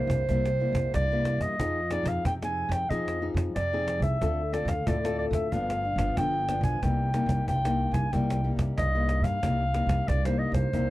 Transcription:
Already playing: nylon-string guitar G2 G3 A#3 E4, clarinet C5
0.07 upright bass C2, cajon bass, cajon slap
0.29 upright bass C2, nylon-string guitar C3 G3 A#3 E4, cajon bass, cajon slap
0.45 cajon slap
0.60 nylon-string guitar G3 A#3 E4, cajon slap
0.73 upright bass C2, cajon bass, cajon slap
0.94 upright bass C2, nylon-string guitar G2, clarinet D5, cajon bass, cajon slap
1.12 nylon-string guitar G3 A#3 E4
1.25 cajon slap
1.38 upright bass E2, clarinet D#5, cajon bass
1.60 upright bass F2, nylon-string guitar F3 C4 D#4 G#4, cajon bass, cajon slap
1.91 nylon-string guitar C4 D#4 G#4, clarinet D5, cajon slap
2.03 upright bass F2, cajon bass, cajon slap
2.08 clarinet F5
2.25 upright bass F2, nylon-string guitar C3, clarinet G5, cajon bass
2.42 nylon-string guitar C4 D#4 G#4, clarinet G#5, cajon slap
2.56 cajon slap
2.69 upright bass F2, clarinet G5, cajon bass, cajon slap
2.90 upright bass F2, nylon-string guitar F3 C4 D#4 G#4, clarinet D#5, cajon bass
3.08 cajon slap
3.22 nylon-string guitar C4 D#4 G#4, cajon slap
3.34 upright bass F2, cajon bass, cajon slap
3.55 upright bass F2, nylon-string guitar C3, clarinet D5, cajon bass, cajon slap
3.73 nylon-string guitar C4 D#4 G#4
3.88 cajon slap
4.00 upright bass C2, clarinet E5, cajon bass
4.21 upright bass D2, nylon-string guitar D3 C4 F4 A4, cajon bass, cajon slap
4.40 cajon slap
4.52 nylon-string guitar C4 F4 A4, clarinet D5, cajon slap
4.65 upright bass D2, clarinet F5, cajon bass, cajon slap
4.86 upright bass D2, nylon-string guitar A2 C4 F4 A4, clarinet D5, cajon bass
5.04 nylon-string guitar C4 F4 A4, cajon slap
5.19 clarinet D5, cajon slap
5.31 upright bass D2, clarinet E5, cajon bass, cajon slap
5.52 upright bass G1, nylon-string guitar G2 F3 B3 D4, clarinet F5, cajon bass
5.70 cajon slap
5.84 cajon slap
5.96 upright bass G1, nylon-string guitar F3 B3 D4, cajon bass, cajon slap
6.17 upright bass G1, nylon-string guitar D3, clarinet G5, cajon bass, cajon slap
6.49 nylon-string guitar F3 B3 D4, cajon slap
6.61 upright bass B1, clarinet G#5, cajon bass
6.82 upright bass C2, nylon-string guitar C3 G3 A#3 D#4, clarinet G5, cajon bass, cajon slap
7.13 nylon-string guitar G3 A#3 D#4, cajon slap
7.26 upright bass C2, cajon bass, cajon slap
7.47 upright bass C2, nylon-string guitar G2, clarinet G5, cajon bass
7.65 nylon-string guitar G3 A#3 D#4, cajon slap
7.79 cajon slap
7.91 upright bass C2, clarinet G#5, cajon bass, cajon slap
8.12 upright bass C2, nylon-string guitar C3 G3 A#3 D#4, clarinet G5, cajon bass
8.30 cajon slap
8.44 nylon-string guitar G3 A#3 D#4, cajon slap
8.56 upright bass C2, cajon bass, cajon slap
8.78 upright bass C2, nylon-string guitar G2, clarinet D#5, cajon bass, cajon slap
8.95 nylon-string guitar G3 A#3 D#4
9.09 cajon slap
9.21 upright bass G2, clarinet F5, cajon bass
9.43 upright bass C2, nylon-string guitar C3 G3 A#3 D#4, cajon bass, cajon slap
9.74 nylon-string guitar G3 A#3 D#4, cajon slap
9.87 upright bass C2, cajon bass, cajon slap
10.08 upright bass C2, nylon-string guitar G2, clarinet D5, cajon bass
10.25 nylon-string guitar G3 A#3 D#4, clarinet C5, cajon slap
10.39 clarinet D#5, cajon slap
10.52 upright bass C2, clarinet C5, cajon bass, cajon slap
10.73 upright bass C2, nylon-string guitar C3 G3 A#3 D#4, cajon bass

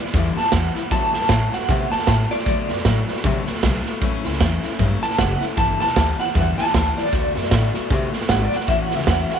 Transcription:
Already playing: clean electric guitar D5
0.00 steel-string acoustic guitar E3 G3 B3 E4
0.06 snare
0.13 upright bass E2, steel-string acoustic guitar G2 D3 E3 G3 B3 E4, kick, snare
0.36 steel-string acoustic guitar E3 G3 B3 E4, clean electric guitar A5, muted upright bass stroke, snare
0.45 snare
0.52 upright bass E2, steel-string acoustic guitar E3 G3 B3 E4, clean electric guitar F#5, kick, snare, hi-hat pedal
0.75 steel-string acoustic guitar E3 G3 B3 E4, muted upright bass stroke, snare
0.91 upright bass D2, steel-string acoustic guitar D3 F#3 A3 B3 F#4, clean electric guitar A5, kick, snare
1.14 upright bass F#2, steel-string acoustic guitar A3 B3 F#4, clean electric guitar A5, snare
1.22 snare
1.29 upright bass A2, steel-string acoustic guitar F#3 A3 B3 F#4, kick, snare, hi-hat pedal
1.52 steel-string acoustic guitar A3 B3 F#4, clean electric guitar F#5, muted upright bass stroke, snare
1.61 snare
1.68 upright bass C3, steel-string acoustic guitar D3 F#3 A3 B3 F#4, kick, snare
1.92 steel-string acoustic guitar A3 B3 F#4, clean electric guitar A5, muted upright bass stroke, snare
1.99 snare
2.07 upright bass A2, steel-string acoustic guitar F#3 A3 B3 F#4, kick, snare, hi-hat pedal
2.31 steel-string acoustic guitar A3 B3 F#4, clean electric guitar D5, muted upright bass stroke, snare
2.39 snare
2.46 upright bass D2, steel-string acoustic guitar D3 F#3 A3 B3 F#4, kick, snare
2.69 upright bass F#2, steel-string acoustic guitar A3 B3 F#4, snare
2.77 snare
2.85 upright bass A2, steel-string acoustic guitar F#3 A3 B3 F#4, kick, snare, hi-hat pedal
3.08 steel-string acoustic guitar A3 B3 F#4, muted upright bass stroke, snare
3.16 snare
3.24 upright bass C3, steel-string acoustic guitar D3 F#3 A3 B3 F#4, kick, snare
3.47 steel-string acoustic guitar A3 B3 F#4, muted upright bass stroke, snare
3.55 snare
3.63 upright bass B1, steel-string acoustic guitar F#3 A3 B3 F#4, kick, snare, hi-hat pedal
3.85 steel-string acoustic guitar A3 B3 F#4, muted upright bass stroke, snare
4.01 upright bass A1, steel-string acoustic guitar A2 F#3 A3 C#4 E4, kick, snare
4.24 upright bass C#2, steel-string acoustic guitar A3 C#4 E4, snare
4.32 snare
4.39 upright bass E2, steel-string acoustic guitar F#3 A3 C#4 E4, kick, snare, hi-hat pedal
4.63 steel-string acoustic guitar A3 C#4 E4, muted upright bass stroke, snare
4.71 snare
4.79 upright bass G2, steel-string acoustic guitar A2 F#3 A3 C#4 E4, kick, snare
5.02 steel-string acoustic guitar A3 C#4 E4, clean electric guitar A5, muted upright bass stroke, snare
5.10 snare
5.18 upright bass F#1, steel-string acoustic guitar F#3 A3 C#4 E4, clean electric guitar F#5, kick, snare, hi-hat pedal
5.40 steel-string acoustic guitar A3 C#4 E4, muted upright bass stroke, snare
5.57 upright bass G1, steel-string acoustic guitar G2 D3 E3 G3 B3 E4, clean electric guitar A5, kick, snare
5.80 upright bass B1, steel-string acoustic guitar E3 G3 B3 E4, clean electric guitar A5, snare
5.88 snare
5.95 upright bass D2, steel-string acoustic guitar E3 G3 B3 E4, kick, snare, hi-hat pedal
6.19 steel-string acoustic guitar E3 G3 B3 E4, clean electric guitar F#5, muted upright bass stroke, snare
6.28 snare
6.35 upright bass E2, steel-string acoustic guitar G2 D3 E3 G3 B3 E4, kick, snare
6.58 steel-string acoustic guitar E3 G3 B3 E4, clean electric guitar A5, muted upright bass stroke, snare
6.66 snare
6.73 upright bass D2, steel-string acoustic guitar E3 G3 B3 E4, kick, snare, hi-hat pedal
6.97 steel-string acoustic guitar E3 G3 B3 E4, clean electric guitar D5, muted upright bass stroke, snare
7.05 snare
7.12 upright bass D2, steel-string acoustic guitar D3 A3 B3 F#4, kick, snare
7.35 upright bass F#2, steel-string acoustic guitar A3 B3 F#4, snare
7.44 snare
7.51 upright bass A2, steel-string acoustic guitar D3 A3 B3 F#4, kick, snare, hi-hat pedal
7.74 steel-string acoustic guitar A3 B3 F#4, muted upright bass stroke, snare
7.90 upright bass C3, steel-string acoustic guitar D3 A3 B3 F#4, kick, snare
8.13 steel-string acoustic guitar A3 B3 F#4, muted upright bass stroke, snare
8.21 snare
8.29 upright bass G#1, steel-string acoustic guitar D3 A3 B3 F#4, clean electric guitar F#5, kick, snare, hi-hat pedal
8.43 clean electric guitar D5
8.52 steel-string acoustic guitar A3 B3 F#4, muted upright bass stroke, snare
8.56 clean electric guitar F#5, snare
8.68 upright bass A1, steel-string acoustic guitar A2 E3 A3 C#4 F#4, clean electric guitar E5, kick, snare
8.82 clean electric guitar F#5
8.91 upright bass C#2, steel-string acoustic guitar C#4 F#4, snare
8.95 steel-string acoustic guitar A3, clean electric guitar E5
8.99 snare
9.07 upright bass E2, steel-string acoustic guitar E3 A3 C#4 F#4, clean electric guitar F#5, kick, snare, hi-hat pedal
9.21 clean electric guitar E5
9.30 steel-string acoustic guitar A3 C#4 F#4, muted upright bass stroke, snare
9.34 clean electric guitar F#5

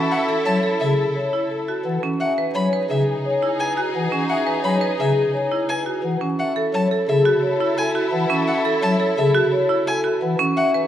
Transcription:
Already playing: marimba C#4, string section E4 A4
0.11 vibraphone E5, violin F#5
0.29 marimba A4
0.45 pipe organ F#3, vibraphone C#5, violin A5
0.63 marimba A4
0.80 pipe organ C#3, vibraphone G#4, violin E5
1.15 vibraphone C#5
1.33 marimba E4
1.50 vibraphone A4
1.68 marimba F#4
1.85 pipe organ E3, vibraphone F#5
2.03 marimba C#4
2.20 string section D#4 G#4, vibraphone E5, violin F#5
2.38 marimba B4
2.55 pipe organ F#3, vibraphone C#5, violin B5
2.73 marimba B4
2.89 pipe organ C#3, vibraphone G#4, violin E5
3.25 vibraphone C#5
3.42 marimba E4
3.59 vibraphone B4, violin G#5
3.77 marimba F#4
3.95 pipe organ E3, vibraphone F#5
4.12 marimba C#4
4.29 vibraphone E5, violin F#5
4.47 marimba B4
4.64 pipe organ F#3, vibraphone C#5, violin B5
4.81 marimba B4
4.99 pipe organ C#3, vibraphone G#4, violin E5
5.34 vibraphone C#5
5.52 marimba E4
5.69 vibraphone B4, violin G#5
5.86 marimba F#4
6.04 pipe organ E3, vibraphone F#5
6.21 marimba C#4
6.38 string section E4 A4, vibraphone E5, violin F#5
6.56 marimba A4
6.74 pipe organ F#3, vibraphone C#5, violin A5
6.91 marimba A4
7.08 pipe organ C#3, vibraphone G#4, violin E5
7.25 marimba F#4
7.42 vibraphone C#5
7.60 marimba E4
7.77 vibraphone A4, violin G#5
7.95 marimba F#4
8.12 pipe organ E3, vibraphone F#5
8.30 marimba C#4
8.47 vibraphone E5, violin F#5
8.65 marimba A4
8.82 pipe organ F#3, vibraphone C#5, violin A5
9.00 marimba A4
9.17 pipe organ C#3, vibraphone G#4, violin E5
9.34 marimba F#4
9.52 vibraphone C#5
9.69 marimba E4
9.87 vibraphone A4, violin G#5
10.04 marimba F#4
10.22 pipe organ E3, vibraphone F#5
10.39 marimba C#4
10.57 string section D#4 G#4, vibraphone E5, violin F#5
10.74 marimba B4

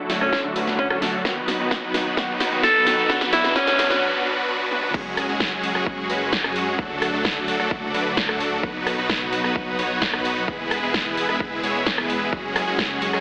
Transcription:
Already playing: supersaw synth D2 A2 F#3 A3 D4 F#4 A4, riser
0.09 grand piano D3 F#3 A3 F#4, snare, open hi-hat
0.21 supersaw synth F#3 A3 D4 F#4 A4, alto saxophone C#4, cross-stick
0.33 kick, snare
0.44 grand piano D3 F#3 A3 F#4
0.56 supersaw synth F#3 A3 D4 F#4 B4, open hi-hat
0.67 snare
0.78 grand piano D3 F#3 A3 F#4, alto saxophone C#4, kick
0.90 supersaw synth F#3 A3 D4 F#4 A4, alto saxophone C#4, cross-stick
1.01 grand piano D3 F#3 A3 F#4, snare, open hi-hat
1.24 supersaw synth B2 F#3 B3 D#4 F#4 B4, grand piano D#3 F#3 B3 F#4, kick, snare
1.48 snare, open hi-hat
1.59 grand piano D#3 F#3 B3 D#4, supersaw synth F#3 B3 D#4 F#4 B4
1.71 kick, snare
1.94 grand piano D#3 F#3 B3 F#4, snare, open hi-hat
2.06 supersaw synth F#3 B3 D#4 F#4 B4
2.17 grand piano D#3 F#3 B3 F#4, supersaw synth B3 B4, kick, snare
2.40 snare, open hi-hat
2.51 grand piano D#3 F#3 B3 D#4, supersaw synth F#3 B3 D#4 F#4 B4
2.63 alto saxophone A4, kick, snare
2.86 grand piano D#3 F#3 B3 F#4, snare, open hi-hat
2.98 supersaw synth F#3 B3 D#4 F#4 B4
3.09 supersaw synth E2 F#3 G#3 B3 D4 F#4 B4, grand piano D3 F#3 B3 F#4, kick, snare, noise sweep
3.21 snare
3.33 alto saxophone E4, snare, open hi-hat
3.44 grand piano D3 F#3 B3 D4, supersaw synth F#3 B3 D4 F#4 B4, snare
3.55 grand piano D3 F#3 B3 F#4, supersaw synth F#3 B3 D4 F#4 B4, alto saxophone C#4, kick, snare
3.67 snare
3.79 snare, open hi-hat
3.90 grand piano D3 F#3 B3 D4, supersaw synth F#3 B3 D4 F#4 B4, snare
4.02 supersaw synth F#3 B3 D4 F#4 B4
4.25 supersaw synth F#3 B3 D4 F#4 B4
4.48 supersaw synth F#3 B3 D4 F#4 B4
4.71 supersaw synth F#3 B3 D4 F#4 B4, high tom
4.83 mid tom
4.94 detuned saw bass F#1, supersaw synth F#3 G#3 C#4 G#4 F#5 C#6, kick, crash
5.17 cross-stick, open hi-hat
5.29 detuned saw bass F#1, supersaw synth F#3 G#3 C#4 F#4 G#4
5.40 kick, snare
5.63 open hi-hat
5.75 detuned saw bass F#1, supersaw synth F#3 G#3 C#4 F#4 G#4, cross-stick
5.87 kick
6.10 detuned saw bass F#1, supersaw synth F#3 G#3 C#4 F#4 B4, open hi-hat
6.33 kick, snare
6.44 detuned saw bass F#2, supersaw synth F#3 G#3 C#4 F#4 G#4, cross-stick
6.56 open hi-hat
6.79 detuned saw bass D2, supersaw synth F#3 A3 D4 F#4 A4 D6, kick
7.02 cross-stick, open hi-hat
7.13 detuned saw bass D2, supersaw synth F#3 A3 D4 F#4 A4
7.25 kick, snare
7.48 open hi-hat
7.60 detuned saw bass D2, supersaw synth F#3 A3 D4 F#4 A4, cross-stick
7.71 kick
7.94 detuned saw bass D2, supersaw synth F#3 A3 D4 F#4 B4, open hi-hat
8.17 kick, snare
8.29 detuned saw bass D2, supersaw synth F#3 A3 D4 F#4 A4, cross-stick
8.40 open hi-hat
8.63 detuned saw bass B1, supersaw synth F#3 B3 D#4 F#4 B4 D#6, kick
8.87 cross-stick, open hi-hat
8.98 detuned saw bass B1, supersaw synth F#3 B3 D#4 F#4 B4
9.10 kick, snare
9.33 open hi-hat
9.44 detuned saw bass B1, supersaw synth F#3 B3 D#4 F#4 B4, cross-stick
9.56 kick
9.79 detuned saw bass B1, supersaw synth F#3 B3 D#4 F#4 C#5, open hi-hat
10.02 kick, snare
10.13 detuned saw bass B1, supersaw synth F#3 B3 D#4 F#4 B4, cross-stick
10.25 open hi-hat
10.48 detuned saw bass E1, supersaw synth G#3 B3 G#4 G#5 E6, kick
10.71 cross-stick, open hi-hat
10.83 detuned saw bass E1, supersaw synth G#3 B3 E4 G#4 B4
10.94 kick, snare
11.17 open hi-hat
11.29 detuned saw bass E1, supersaw synth G#3 B3 E4 G#4 B4, cross-stick
11.40 kick
11.63 detuned saw bass E1, supersaw synth G#3 B3 E4 G#4 C#5, open hi-hat
11.86 kick, snare
11.98 detuned saw bass E1, supersaw synth G#3 B3 E4 G#4 B4, cross-stick
12.10 open hi-hat
12.33 detuned saw bass F#1, supersaw synth F#3 G#3 C#4 F#4 G#4 F#5 C#6, kick
12.56 cross-stick, open hi-hat
12.67 detuned saw bass F#1, supersaw synth F#3 G#3 C#4 F#4 G#4
12.79 kick, snare
13.02 open hi-hat
13.13 detuned saw bass F#1, supersaw synth F#3 G#3 C#4 F#4 G#4, cross-stick

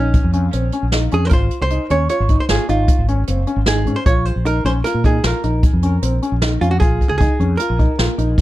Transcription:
Already playing: fretless electric bass A#1, hollow-body jazz guitar C#4, grand piano D#4
0.14 kick, closed hi-hat
0.24 fretless electric bass F2
0.33 grand piano C#4, closed hi-hat
0.53 fretless electric bass A#1, grand piano C4, closed hi-hat
0.72 grand piano C#4, closed hi-hat
0.82 fretless electric bass A#1
0.92 grand piano D#4, snare, closed hi-hat
1.11 fretless electric bass F2, grand piano C#4, hollow-body jazz guitar G#4, closed hi-hat
1.25 hollow-body jazz guitar A#4 C5
1.30 fretless electric bass G#1, grand piano F4, hollow-body jazz guitar A#4 C5, kick, closed hi-hat
1.51 closed hi-hat
1.61 fretless electric bass C2, hollow-body jazz guitar C5
1.70 grand piano D#4, closed hi-hat
1.90 fretless electric bass D#2, grand piano C#4, hollow-body jazz guitar C#5, closed hi-hat
2.09 grand piano F4, hollow-body jazz guitar C#5, closed hi-hat
2.20 fretless electric bass G#1
2.29 grand piano D#4, kick, closed hi-hat
2.40 hollow-body jazz guitar C5
2.49 fretless electric bass G#1, grand piano F4, hollow-body jazz guitar G#4, snare, closed hi-hat
2.69 fretless electric bass G#1, grand piano D#4, hollow-body jazz guitar F4, closed hi-hat
2.88 kick, closed hi-hat
2.98 fretless electric bass G#1
3.08 grand piano C#4, closed hi-hat
3.27 fretless electric bass F#1, grand piano C4, closed hi-hat
3.47 grand piano C#4, closed hi-hat
3.56 fretless electric bass G#1
3.66 grand piano D#4, hollow-body jazz guitar G#4, snare, closed hi-hat
3.86 fretless electric bass G#2, grand piano C#4, closed hi-hat
3.96 hollow-body jazz guitar C5
4.06 fretless electric bass A#1, grand piano F4, hollow-body jazz guitar C#5, kick, closed hi-hat
4.25 hollow-body jazz guitar C5, closed hi-hat
4.36 fretless electric bass A#1
4.45 grand piano D#4, hollow-body jazz guitar A#4, closed hi-hat
4.64 fretless electric bass A#1, grand piano C#4, hollow-body jazz guitar C5, snare, closed hi-hat
4.84 grand piano F4, hollow-body jazz guitar A#4, snare, closed hi-hat
4.94 fretless electric bass A#2
5.04 grand piano D#4, hollow-body jazz guitar G#4, kick, closed hi-hat
5.24 fretless electric bass A#1, grand piano F4, hollow-body jazz guitar A#4, snare, closed hi-hat
5.43 fretless electric bass A#1, grand piano D#4, closed hi-hat
5.63 kick, closed hi-hat
5.73 fretless electric bass F2
5.82 grand piano C#4, closed hi-hat
6.02 fretless electric bass A#1, grand piano C4, closed hi-hat
6.22 grand piano C#4, closed hi-hat
6.32 fretless electric bass A#1
6.42 grand piano D#4, snare, closed hi-hat
6.61 fretless electric bass F2, grand piano C#4, hollow-body jazz guitar F4, closed hi-hat
6.71 hollow-body jazz guitar F#4
6.80 fretless electric bass A#1, grand piano F4, hollow-body jazz guitar G#4, kick, closed hi-hat
7.01 kick, closed hi-hat
7.09 fretless electric bass C#2, hollow-body jazz guitar G#4
7.18 grand piano D#4, hollow-body jazz guitar G#4, kick, closed hi-hat
7.39 fretless electric bass F2, grand piano C#4, closed hi-hat
7.57 grand piano F4, hollow-body jazz guitar A#4, closed hi-hat
7.70 fretless electric bass A#1
7.79 grand piano D#4, kick, closed hi-hat
7.99 fretless electric bass A#1, grand piano F4, snare, closed hi-hat
8.18 fretless electric bass A#1, grand piano D#4, closed hi-hat
8.38 kick, snare, closed hi-hat

